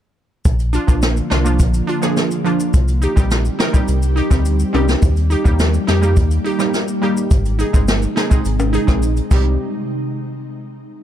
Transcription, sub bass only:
0.45 0.78 A#1 loud
0.88 1.21 A#1 medium
1.31 1.61 C2 medium
1.60 1.82 A#1 loud
2.74 3.07 C2 loud
3.17 3.50 A#1 medium
3.88 4.21 C2 loud
4.31 4.64 D2 loud
4.74 4.96 C2 medium
5.03 5.36 D#2 loud
5.45 5.79 D#2 loud
5.88 6.18 F2 loud
6.17 6.39 D#2 loud
7.31 7.64 G#1 loud
7.74 8.07 G1 medium
8.45 8.78 G#1 loud
8.88 9.21 A#1 medium
9.31 9.58 C2 loud

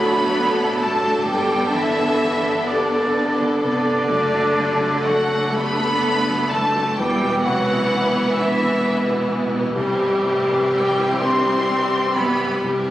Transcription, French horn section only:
0.00 1.25 A3 medium
0.00 1.25 F#4 medium
1.28 4.04 B3 medium
1.28 6.78 A4 medium
4.08 6.78 A3 medium
6.95 9.69 E3 medium
6.95 9.73 B4 medium
9.74 12.57 G3 medium
9.74 12.61 G4 medium
12.62 12.90 G3 medium
12.62 12.90 G4 medium

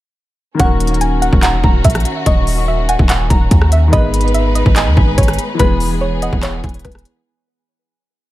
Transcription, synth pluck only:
0.60 0.99 F#5 loud
1.01 1.18 G#5 medium
1.22 1.39 F#5 medium
1.43 1.82 F#5 medium
1.85 2.24 E5 medium
2.27 2.66 D#5 loud
2.68 2.85 E5 medium
2.89 3.06 F#5 medium
3.10 3.68 F#5 loud
3.72 3.89 E5 medium
3.93 4.32 D#5 loud
4.34 4.51 E5 medium
4.55 4.72 D#5 medium
4.76 5.15 D#5 medium
5.18 5.57 C#5 medium
5.60 5.99 B4 loud
6.01 6.18 C#5 medium
6.22 6.39 D#5 medium
6.43 6.82 C#5 medium
6.85 7.24 B4 medium

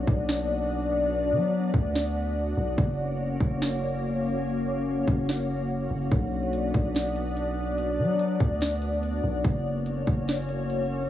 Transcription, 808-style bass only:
0.07 1.34 B1 loud
1.32 1.72 F#3 medium
1.74 2.54 D2 loud
2.57 2.77 B1 loud
2.78 3.38 F#1 loud
3.41 5.03 F#1 loud
5.07 5.87 F#1 loud
5.91 6.11 F#1 loud
6.12 6.71 B1 loud
6.74 8.00 B1 loud
7.99 8.39 F#3 loud
8.41 9.21 D2 loud
9.24 9.44 B1 loud
9.45 10.05 F#1 loud
10.07 11.10 F#1 loud

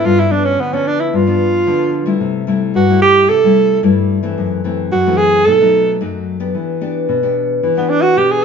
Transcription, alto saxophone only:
0.06 0.21 F4 medium
0.19 0.33 E4 medium
0.32 0.46 D4 medium
0.44 0.62 C#4 medium
0.61 0.75 B3 medium
0.74 0.89 C#4 medium
0.87 1.02 D4 medium
1.00 1.18 E4 medium
1.16 2.23 F4 medium
2.76 3.01 F#4 medium
3.02 3.30 G4 loud
3.29 3.84 A4 medium
4.92 5.18 F#4 medium
5.17 5.47 G#4 loud
5.45 6.00 A4 medium
7.77 7.91 B3 medium
7.89 8.04 D4 medium
8.02 8.19 F#4 medium
8.17 8.33 G4 medium
8.31 8.45 G#4 medium

